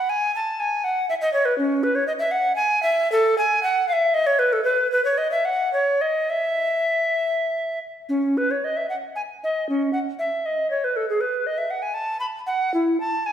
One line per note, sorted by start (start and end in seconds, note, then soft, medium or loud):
0.00 0.11 F#5 medium
0.09 0.35 G#5 medium
0.36 0.61 A5 medium
0.60 0.86 G#5 medium
0.84 1.08 F#5 medium
1.09 1.14 E5 medium
1.21 1.33 D#5 medium
1.33 1.47 C#5 medium
1.45 1.57 B4 medium
1.58 1.85 C#4 medium
1.83 1.97 B4 medium
1.95 2.07 C#5 medium
2.07 2.13 D#5 medium
2.19 2.33 E5 medium
2.31 2.55 F#5 medium
2.56 2.82 G#5 medium
2.83 3.11 E5 loud
3.12 3.38 A4 loud
3.38 3.62 G#5 medium
3.63 3.88 F#5 medium
3.88 3.94 F5 medium
3.93 4.16 E5 medium
4.14 4.28 D#5 medium
4.27 4.41 C#5 medium
4.39 4.54 B4 medium
4.53 4.64 A4 medium
4.64 4.90 B4 medium
4.92 5.04 B4 medium
5.05 5.19 C#5 medium
5.18 5.31 D#5 medium
5.31 5.47 E5 medium
5.45 5.72 F#5 medium
5.73 6.03 C#5 medium
6.01 6.31 D#5 medium
6.30 7.79 E5 medium
8.09 8.39 C#4 soft
8.37 8.52 B4 medium
8.51 8.66 C#5 soft
8.64 8.78 D#5 soft
8.77 8.89 E5 soft
8.89 8.95 F#5 medium
9.16 9.22 G#5 medium
9.44 9.69 D#5 medium
9.69 9.92 C#4 medium
9.93 9.99 F#5 medium
10.19 10.47 E5 soft
10.46 10.70 D#5 medium
10.71 10.86 C#5 medium
10.84 10.98 B4 medium
10.96 11.09 A4 medium
11.10 11.22 G#4 soft
11.21 11.48 B4 medium
11.47 11.59 D#5 medium
11.58 11.72 E5 soft
11.71 11.84 F#5 medium
11.82 11.96 G#5 medium
11.94 12.19 A5 medium
12.20 12.26 B5 medium
12.47 12.74 F#5 medium
12.74 13.00 E4 medium
13.00 13.28 A5 medium
13.26 13.32 G#5 medium